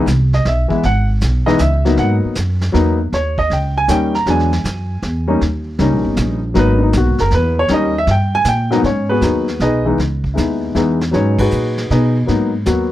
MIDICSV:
0, 0, Header, 1, 5, 480
1, 0, Start_track
1, 0, Key_signature, 5, "minor"
1, 0, Tempo, 381679
1, 1041, Time_signature, 3, 2, 24, 8
1, 16246, End_track
2, 0, Start_track
2, 0, Title_t, "Grand piano"
2, 0, Program_c, 0, 0
2, 431, Note_on_c, 0, 75, 85
2, 571, Note_off_c, 0, 75, 0
2, 595, Note_on_c, 0, 76, 75
2, 858, Note_on_c, 0, 52, 58
2, 873, Note_on_c, 0, 56, 55
2, 884, Note_on_c, 0, 59, 55
2, 887, Note_on_c, 0, 64, 70
2, 1014, Note_off_c, 0, 52, 0
2, 1021, Note_off_c, 0, 56, 0
2, 1027, Note_off_c, 0, 59, 0
2, 1027, Note_off_c, 0, 76, 0
2, 1028, Note_off_c, 0, 64, 0
2, 1074, Note_on_c, 0, 78, 97
2, 1370, Note_off_c, 0, 78, 0
2, 1837, Note_on_c, 0, 56, 67
2, 1838, Note_on_c, 0, 52, 73
2, 1840, Note_on_c, 0, 75, 90
2, 1849, Note_on_c, 0, 59, 67
2, 1855, Note_on_c, 0, 63, 83
2, 1985, Note_off_c, 0, 56, 0
2, 1986, Note_off_c, 0, 52, 0
2, 1991, Note_off_c, 0, 59, 0
2, 1994, Note_off_c, 0, 63, 0
2, 1998, Note_off_c, 0, 75, 0
2, 2019, Note_on_c, 0, 76, 80
2, 2324, Note_on_c, 0, 54, 65
2, 2325, Note_on_c, 0, 58, 55
2, 2328, Note_on_c, 0, 59, 58
2, 2339, Note_on_c, 0, 63, 71
2, 2460, Note_off_c, 0, 76, 0
2, 2504, Note_on_c, 0, 78, 86
2, 2691, Note_off_c, 0, 78, 0
2, 2934, Note_off_c, 0, 54, 0
2, 2935, Note_off_c, 0, 58, 0
2, 2936, Note_off_c, 0, 59, 0
2, 2942, Note_off_c, 0, 63, 0
2, 3424, Note_on_c, 0, 54, 68
2, 3433, Note_on_c, 0, 58, 67
2, 3440, Note_on_c, 0, 59, 67
2, 3446, Note_on_c, 0, 63, 76
2, 3725, Note_off_c, 0, 54, 0
2, 3730, Note_off_c, 0, 58, 0
2, 3733, Note_off_c, 0, 59, 0
2, 3736, Note_off_c, 0, 63, 0
2, 3949, Note_on_c, 0, 73, 77
2, 4251, Note_off_c, 0, 73, 0
2, 4259, Note_on_c, 0, 75, 92
2, 4409, Note_off_c, 0, 75, 0
2, 4442, Note_on_c, 0, 79, 67
2, 4737, Note_off_c, 0, 79, 0
2, 4748, Note_on_c, 0, 80, 101
2, 4882, Note_on_c, 0, 55, 61
2, 4884, Note_on_c, 0, 58, 55
2, 4887, Note_on_c, 0, 61, 58
2, 4894, Note_off_c, 0, 80, 0
2, 4904, Note_on_c, 0, 63, 64
2, 4912, Note_on_c, 0, 79, 85
2, 5174, Note_off_c, 0, 55, 0
2, 5175, Note_off_c, 0, 58, 0
2, 5177, Note_off_c, 0, 61, 0
2, 5185, Note_off_c, 0, 63, 0
2, 5212, Note_off_c, 0, 79, 0
2, 5220, Note_on_c, 0, 82, 93
2, 5361, Note_on_c, 0, 54, 59
2, 5370, Note_off_c, 0, 82, 0
2, 5380, Note_on_c, 0, 56, 53
2, 5384, Note_on_c, 0, 59, 47
2, 5390, Note_on_c, 0, 62, 63
2, 5410, Note_on_c, 0, 80, 81
2, 5654, Note_off_c, 0, 54, 0
2, 5663, Note_off_c, 0, 56, 0
2, 5665, Note_off_c, 0, 59, 0
2, 5668, Note_off_c, 0, 62, 0
2, 6633, Note_on_c, 0, 55, 62
2, 6640, Note_on_c, 0, 58, 65
2, 6641, Note_on_c, 0, 61, 61
2, 6657, Note_on_c, 0, 63, 71
2, 6778, Note_off_c, 0, 80, 0
2, 6784, Note_off_c, 0, 55, 0
2, 6788, Note_off_c, 0, 58, 0
2, 6788, Note_off_c, 0, 61, 0
2, 6796, Note_off_c, 0, 63, 0
2, 7277, Note_on_c, 0, 55, 59
2, 7287, Note_on_c, 0, 58, 55
2, 7302, Note_on_c, 0, 61, 51
2, 7305, Note_on_c, 0, 63, 71
2, 8016, Note_off_c, 0, 55, 0
2, 8021, Note_off_c, 0, 58, 0
2, 8028, Note_off_c, 0, 61, 0
2, 8030, Note_off_c, 0, 63, 0
2, 8226, Note_on_c, 0, 54, 69
2, 8239, Note_on_c, 0, 58, 61
2, 8245, Note_on_c, 0, 59, 58
2, 8245, Note_on_c, 0, 63, 82
2, 8283, Note_on_c, 0, 71, 89
2, 8525, Note_on_c, 0, 62, 45
2, 8548, Note_off_c, 0, 62, 0
2, 8567, Note_off_c, 0, 63, 0
2, 8574, Note_off_c, 0, 71, 0
2, 8586, Note_on_c, 0, 63, 63
2, 8729, Note_off_c, 0, 63, 0
2, 8771, Note_on_c, 0, 66, 74
2, 9057, Note_off_c, 0, 66, 0
2, 9060, Note_on_c, 0, 70, 85
2, 9205, Note_off_c, 0, 70, 0
2, 9236, Note_on_c, 0, 71, 82
2, 9528, Note_off_c, 0, 71, 0
2, 9548, Note_on_c, 0, 73, 93
2, 9574, Note_off_c, 0, 54, 0
2, 9581, Note_off_c, 0, 58, 0
2, 9584, Note_off_c, 0, 59, 0
2, 9673, Note_on_c, 0, 55, 64
2, 9683, Note_on_c, 0, 58, 55
2, 9689, Note_off_c, 0, 73, 0
2, 9690, Note_on_c, 0, 61, 57
2, 9700, Note_on_c, 0, 63, 69
2, 9730, Note_on_c, 0, 75, 97
2, 9963, Note_off_c, 0, 55, 0
2, 9968, Note_off_c, 0, 58, 0
2, 9971, Note_off_c, 0, 61, 0
2, 9976, Note_off_c, 0, 63, 0
2, 10015, Note_off_c, 0, 75, 0
2, 10040, Note_on_c, 0, 76, 96
2, 10174, Note_off_c, 0, 76, 0
2, 10201, Note_on_c, 0, 79, 88
2, 10489, Note_off_c, 0, 79, 0
2, 10500, Note_on_c, 0, 80, 113
2, 10643, Note_off_c, 0, 80, 0
2, 10673, Note_on_c, 0, 79, 92
2, 10946, Note_on_c, 0, 44, 67
2, 10952, Note_on_c, 0, 54, 67
2, 10962, Note_on_c, 0, 58, 66
2, 10968, Note_on_c, 0, 59, 65
2, 10969, Note_on_c, 0, 63, 79
2, 11027, Note_off_c, 0, 79, 0
2, 11094, Note_off_c, 0, 44, 0
2, 11097, Note_off_c, 0, 54, 0
2, 11102, Note_off_c, 0, 58, 0
2, 11105, Note_off_c, 0, 59, 0
2, 11105, Note_off_c, 0, 63, 0
2, 11138, Note_on_c, 0, 73, 69
2, 11141, Note_on_c, 0, 61, 55
2, 11437, Note_off_c, 0, 73, 0
2, 11437, Note_on_c, 0, 71, 86
2, 11438, Note_off_c, 0, 61, 0
2, 11443, Note_on_c, 0, 68, 61
2, 11450, Note_on_c, 0, 59, 62
2, 11460, Note_on_c, 0, 66, 58
2, 11580, Note_off_c, 0, 59, 0
2, 11583, Note_on_c, 0, 54, 50
2, 11589, Note_on_c, 0, 58, 45
2, 11599, Note_on_c, 0, 59, 43
2, 11605, Note_on_c, 0, 63, 56
2, 11876, Note_off_c, 0, 54, 0
2, 11879, Note_off_c, 0, 58, 0
2, 11884, Note_off_c, 0, 59, 0
2, 11887, Note_off_c, 0, 63, 0
2, 12030, Note_off_c, 0, 71, 0
2, 12033, Note_off_c, 0, 68, 0
2, 12042, Note_off_c, 0, 66, 0
2, 12095, Note_on_c, 0, 75, 84
2, 12102, Note_on_c, 0, 71, 64
2, 12108, Note_on_c, 0, 63, 62
2, 12108, Note_on_c, 0, 68, 59
2, 12388, Note_on_c, 0, 52, 60
2, 12395, Note_off_c, 0, 63, 0
2, 12395, Note_off_c, 0, 75, 0
2, 12398, Note_off_c, 0, 71, 0
2, 12398, Note_on_c, 0, 56, 55
2, 12399, Note_on_c, 0, 59, 51
2, 12401, Note_off_c, 0, 68, 0
2, 12413, Note_on_c, 0, 63, 59
2, 12534, Note_off_c, 0, 52, 0
2, 12539, Note_off_c, 0, 56, 0
2, 12540, Note_off_c, 0, 59, 0
2, 12547, Note_off_c, 0, 63, 0
2, 13001, Note_on_c, 0, 64, 47
2, 13015, Note_on_c, 0, 56, 44
2, 13020, Note_on_c, 0, 59, 45
2, 13032, Note_on_c, 0, 63, 53
2, 13481, Note_off_c, 0, 64, 0
2, 13488, Note_off_c, 0, 56, 0
2, 13491, Note_off_c, 0, 59, 0
2, 13497, Note_off_c, 0, 63, 0
2, 13514, Note_on_c, 0, 52, 59
2, 13526, Note_on_c, 0, 56, 55
2, 13528, Note_on_c, 0, 59, 54
2, 13539, Note_on_c, 0, 63, 62
2, 13802, Note_off_c, 0, 52, 0
2, 13808, Note_off_c, 0, 56, 0
2, 13809, Note_off_c, 0, 59, 0
2, 13815, Note_off_c, 0, 63, 0
2, 13976, Note_on_c, 0, 54, 58
2, 13992, Note_on_c, 0, 56, 47
2, 13996, Note_on_c, 0, 71, 52
2, 14000, Note_on_c, 0, 63, 63
2, 14014, Note_on_c, 0, 73, 68
2, 14021, Note_on_c, 0, 61, 53
2, 14314, Note_off_c, 0, 71, 0
2, 14315, Note_off_c, 0, 73, 0
2, 14319, Note_off_c, 0, 61, 0
2, 14320, Note_off_c, 0, 63, 0
2, 14333, Note_on_c, 0, 71, 71
2, 14339, Note_on_c, 0, 63, 64
2, 14340, Note_on_c, 0, 68, 62
2, 14347, Note_on_c, 0, 66, 66
2, 14921, Note_off_c, 0, 71, 0
2, 14924, Note_off_c, 0, 63, 0
2, 14925, Note_off_c, 0, 68, 0
2, 14929, Note_off_c, 0, 66, 0
2, 14982, Note_on_c, 0, 63, 62
2, 14982, Note_on_c, 0, 75, 73
2, 14987, Note_on_c, 0, 71, 55
2, 14993, Note_on_c, 0, 68, 57
2, 15281, Note_off_c, 0, 63, 0
2, 15281, Note_off_c, 0, 75, 0
2, 15284, Note_off_c, 0, 71, 0
2, 15287, Note_off_c, 0, 68, 0
2, 15333, Note_off_c, 0, 54, 0
2, 15341, Note_off_c, 0, 56, 0
2, 15421, Note_on_c, 0, 54, 51
2, 15433, Note_on_c, 0, 58, 51
2, 15436, Note_on_c, 0, 59, 55
2, 15452, Note_on_c, 0, 63, 66
2, 15719, Note_off_c, 0, 54, 0
2, 15725, Note_off_c, 0, 58, 0
2, 15726, Note_off_c, 0, 59, 0
2, 15734, Note_off_c, 0, 63, 0
2, 15918, Note_on_c, 0, 54, 56
2, 15926, Note_on_c, 0, 58, 52
2, 15934, Note_on_c, 0, 66, 61
2, 15937, Note_on_c, 0, 59, 48
2, 16246, Note_off_c, 0, 54, 0
2, 16246, Note_off_c, 0, 58, 0
2, 16246, Note_off_c, 0, 59, 0
2, 16246, Note_off_c, 0, 66, 0
2, 16246, End_track
3, 0, Start_track
3, 0, Title_t, "Upright bass"
3, 0, Program_c, 1, 32
3, 76, Note_on_c, 1, 36, 82
3, 544, Note_off_c, 1, 36, 0
3, 569, Note_on_c, 1, 35, 87
3, 863, Note_off_c, 1, 35, 0
3, 1056, Note_on_c, 1, 32, 82
3, 1516, Note_off_c, 1, 32, 0
3, 1535, Note_on_c, 1, 35, 86
3, 1997, Note_off_c, 1, 35, 0
3, 2006, Note_on_c, 1, 37, 80
3, 2473, Note_off_c, 1, 37, 0
3, 2489, Note_on_c, 1, 44, 84
3, 2787, Note_off_c, 1, 44, 0
3, 2973, Note_on_c, 1, 42, 85
3, 3437, Note_off_c, 1, 42, 0
3, 3449, Note_on_c, 1, 40, 88
3, 3915, Note_off_c, 1, 40, 0
3, 3930, Note_on_c, 1, 39, 75
3, 4396, Note_off_c, 1, 39, 0
3, 4402, Note_on_c, 1, 37, 79
3, 4872, Note_off_c, 1, 37, 0
3, 4880, Note_on_c, 1, 39, 81
3, 5350, Note_off_c, 1, 39, 0
3, 5357, Note_on_c, 1, 40, 82
3, 5828, Note_off_c, 1, 40, 0
3, 5836, Note_on_c, 1, 42, 82
3, 6307, Note_off_c, 1, 42, 0
3, 6319, Note_on_c, 1, 40, 88
3, 6789, Note_off_c, 1, 40, 0
3, 6809, Note_on_c, 1, 39, 78
3, 7273, Note_off_c, 1, 39, 0
3, 7281, Note_on_c, 1, 37, 89
3, 7450, Note_off_c, 1, 37, 0
3, 7450, Note_on_c, 1, 34, 57
3, 7593, Note_off_c, 1, 34, 0
3, 7601, Note_on_c, 1, 31, 67
3, 7751, Note_off_c, 1, 31, 0
3, 7765, Note_on_c, 1, 34, 95
3, 8229, Note_off_c, 1, 34, 0
3, 8238, Note_on_c, 1, 32, 85
3, 8704, Note_off_c, 1, 32, 0
3, 8729, Note_on_c, 1, 35, 85
3, 8883, Note_on_c, 1, 32, 64
3, 8902, Note_off_c, 1, 35, 0
3, 9042, Note_off_c, 1, 32, 0
3, 9048, Note_on_c, 1, 30, 73
3, 9193, Note_off_c, 1, 30, 0
3, 9201, Note_on_c, 1, 40, 98
3, 9664, Note_off_c, 1, 40, 0
3, 9677, Note_on_c, 1, 39, 84
3, 10142, Note_off_c, 1, 39, 0
3, 10148, Note_on_c, 1, 43, 93
3, 10617, Note_off_c, 1, 43, 0
3, 10623, Note_on_c, 1, 46, 93
3, 11094, Note_off_c, 1, 46, 0
3, 11110, Note_on_c, 1, 44, 75
3, 11577, Note_off_c, 1, 44, 0
3, 11584, Note_on_c, 1, 39, 80
3, 12053, Note_off_c, 1, 39, 0
3, 12068, Note_on_c, 1, 35, 81
3, 12536, Note_off_c, 1, 35, 0
3, 12551, Note_on_c, 1, 37, 74
3, 13017, Note_off_c, 1, 37, 0
3, 13044, Note_on_c, 1, 39, 83
3, 13505, Note_off_c, 1, 39, 0
3, 13518, Note_on_c, 1, 40, 80
3, 13982, Note_off_c, 1, 40, 0
3, 14004, Note_on_c, 1, 44, 76
3, 14465, Note_off_c, 1, 44, 0
3, 14489, Note_on_c, 1, 46, 75
3, 14949, Note_off_c, 1, 46, 0
3, 14968, Note_on_c, 1, 47, 78
3, 15429, Note_off_c, 1, 47, 0
3, 15450, Note_on_c, 1, 44, 75
3, 15911, Note_off_c, 1, 44, 0
3, 15926, Note_on_c, 1, 39, 79
3, 16222, Note_off_c, 1, 39, 0
3, 16246, End_track
4, 0, Start_track
4, 0, Title_t, "Muted upright bass strokes"
4, 891, Note_on_c, 9, 29, 43
4, 1017, Note_off_c, 9, 29, 0
4, 2825, Note_on_c, 9, 29, 37
4, 2950, Note_off_c, 9, 29, 0
4, 16246, End_track
5, 0, Start_track
5, 0, Title_t, "Drums"
5, 86, Note_on_c, 9, 44, 52
5, 92, Note_on_c, 9, 38, 64
5, 211, Note_off_c, 9, 44, 0
5, 218, Note_off_c, 9, 38, 0
5, 414, Note_on_c, 9, 38, 38
5, 540, Note_off_c, 9, 38, 0
5, 566, Note_on_c, 9, 38, 49
5, 692, Note_off_c, 9, 38, 0
5, 885, Note_on_c, 9, 36, 59
5, 1011, Note_off_c, 9, 36, 0
5, 1045, Note_on_c, 9, 25, 44
5, 1045, Note_on_c, 9, 38, 47
5, 1171, Note_off_c, 9, 38, 0
5, 1520, Note_on_c, 9, 44, 51
5, 1526, Note_on_c, 9, 38, 57
5, 1646, Note_off_c, 9, 44, 0
5, 1652, Note_off_c, 9, 38, 0
5, 1855, Note_on_c, 9, 38, 42
5, 1981, Note_off_c, 9, 38, 0
5, 1994, Note_on_c, 9, 44, 56
5, 2001, Note_on_c, 9, 38, 68
5, 2120, Note_off_c, 9, 44, 0
5, 2126, Note_off_c, 9, 38, 0
5, 2329, Note_on_c, 9, 38, 36
5, 2454, Note_off_c, 9, 38, 0
5, 2479, Note_off_c, 9, 25, 0
5, 2479, Note_on_c, 9, 25, 52
5, 2479, Note_on_c, 9, 38, 45
5, 2605, Note_off_c, 9, 38, 0
5, 2955, Note_on_c, 9, 44, 66
5, 2962, Note_on_c, 9, 38, 60
5, 3081, Note_off_c, 9, 44, 0
5, 3088, Note_off_c, 9, 38, 0
5, 3283, Note_on_c, 9, 38, 39
5, 3409, Note_off_c, 9, 38, 0
5, 3449, Note_on_c, 9, 38, 46
5, 3575, Note_off_c, 9, 38, 0
5, 3928, Note_off_c, 9, 25, 0
5, 3928, Note_on_c, 9, 25, 44
5, 3928, Note_on_c, 9, 38, 43
5, 4054, Note_off_c, 9, 38, 0
5, 4248, Note_on_c, 9, 36, 56
5, 4374, Note_off_c, 9, 36, 0
5, 4413, Note_on_c, 9, 38, 45
5, 4538, Note_off_c, 9, 38, 0
5, 4882, Note_on_c, 9, 44, 65
5, 4888, Note_on_c, 9, 38, 63
5, 5008, Note_off_c, 9, 44, 0
5, 5014, Note_off_c, 9, 38, 0
5, 5211, Note_on_c, 9, 38, 37
5, 5337, Note_off_c, 9, 38, 0
5, 5361, Note_off_c, 9, 25, 0
5, 5361, Note_on_c, 9, 25, 54
5, 5361, Note_on_c, 9, 38, 48
5, 5487, Note_off_c, 9, 38, 0
5, 5521, Note_on_c, 9, 38, 29
5, 5647, Note_off_c, 9, 38, 0
5, 5688, Note_on_c, 9, 38, 45
5, 5814, Note_off_c, 9, 38, 0
5, 5843, Note_on_c, 9, 44, 52
5, 5849, Note_on_c, 9, 38, 65
5, 5968, Note_off_c, 9, 44, 0
5, 5975, Note_off_c, 9, 38, 0
5, 6322, Note_on_c, 9, 38, 46
5, 6447, Note_off_c, 9, 38, 0
5, 6805, Note_off_c, 9, 25, 0
5, 6805, Note_on_c, 9, 25, 57
5, 6805, Note_on_c, 9, 38, 45
5, 6931, Note_off_c, 9, 38, 0
5, 7274, Note_on_c, 9, 38, 44
5, 7400, Note_off_c, 9, 38, 0
5, 7752, Note_on_c, 9, 44, 64
5, 7758, Note_on_c, 9, 38, 71
5, 7877, Note_off_c, 9, 44, 0
5, 7884, Note_off_c, 9, 38, 0
5, 8236, Note_off_c, 9, 25, 0
5, 8236, Note_on_c, 9, 25, 45
5, 8236, Note_on_c, 9, 38, 49
5, 8362, Note_off_c, 9, 38, 0
5, 8709, Note_on_c, 9, 44, 60
5, 8715, Note_on_c, 9, 38, 65
5, 8835, Note_off_c, 9, 44, 0
5, 8841, Note_off_c, 9, 38, 0
5, 9030, Note_on_c, 9, 38, 41
5, 9156, Note_off_c, 9, 38, 0
5, 9189, Note_on_c, 9, 38, 48
5, 9314, Note_off_c, 9, 38, 0
5, 9660, Note_off_c, 9, 25, 0
5, 9660, Note_on_c, 9, 25, 52
5, 9660, Note_on_c, 9, 38, 44
5, 9785, Note_off_c, 9, 38, 0
5, 10147, Note_on_c, 9, 38, 45
5, 10273, Note_off_c, 9, 38, 0
5, 10618, Note_on_c, 9, 44, 56
5, 10625, Note_on_c, 9, 38, 70
5, 10744, Note_off_c, 9, 44, 0
5, 10750, Note_off_c, 9, 38, 0
5, 10960, Note_on_c, 9, 38, 43
5, 11086, Note_off_c, 9, 38, 0
5, 11118, Note_off_c, 9, 25, 0
5, 11118, Note_on_c, 9, 25, 44
5, 11118, Note_on_c, 9, 38, 38
5, 11243, Note_off_c, 9, 38, 0
5, 11589, Note_on_c, 9, 44, 46
5, 11595, Note_on_c, 9, 38, 53
5, 11714, Note_off_c, 9, 44, 0
5, 11721, Note_off_c, 9, 38, 0
5, 11915, Note_on_c, 9, 38, 33
5, 12041, Note_off_c, 9, 38, 0
5, 12072, Note_on_c, 9, 38, 43
5, 12198, Note_off_c, 9, 38, 0
5, 12565, Note_off_c, 9, 25, 0
5, 12565, Note_on_c, 9, 25, 42
5, 12565, Note_on_c, 9, 38, 39
5, 12690, Note_off_c, 9, 38, 0
5, 12877, Note_on_c, 9, 36, 42
5, 13003, Note_off_c, 9, 36, 0
5, 13043, Note_on_c, 9, 44, 49
5, 13049, Note_on_c, 9, 38, 55
5, 13168, Note_off_c, 9, 44, 0
5, 13175, Note_off_c, 9, 38, 0
5, 13524, Note_on_c, 9, 38, 43
5, 13650, Note_off_c, 9, 38, 0
5, 13846, Note_on_c, 9, 38, 45
5, 13972, Note_off_c, 9, 38, 0
5, 14002, Note_off_c, 9, 25, 0
5, 14002, Note_on_c, 9, 25, 48
5, 14002, Note_on_c, 9, 38, 40
5, 14128, Note_off_c, 9, 38, 0
5, 14318, Note_on_c, 9, 36, 75
5, 14320, Note_on_c, 9, 51, 74
5, 14444, Note_off_c, 9, 36, 0
5, 14446, Note_off_c, 9, 51, 0
5, 14473, Note_on_c, 9, 44, 55
5, 14599, Note_off_c, 9, 44, 0
5, 14804, Note_on_c, 9, 38, 37
5, 14930, Note_off_c, 9, 38, 0
5, 14969, Note_on_c, 9, 38, 42
5, 15095, Note_off_c, 9, 38, 0
5, 15445, Note_off_c, 9, 25, 0
5, 15445, Note_on_c, 9, 25, 44
5, 15445, Note_on_c, 9, 38, 39
5, 15570, Note_off_c, 9, 38, 0
5, 15916, Note_on_c, 9, 44, 62
5, 15922, Note_on_c, 9, 38, 56
5, 16042, Note_off_c, 9, 44, 0
5, 16048, Note_off_c, 9, 38, 0
5, 16246, Note_off_c, 9, 25, 0
5, 16246, End_track
0, 0, End_of_file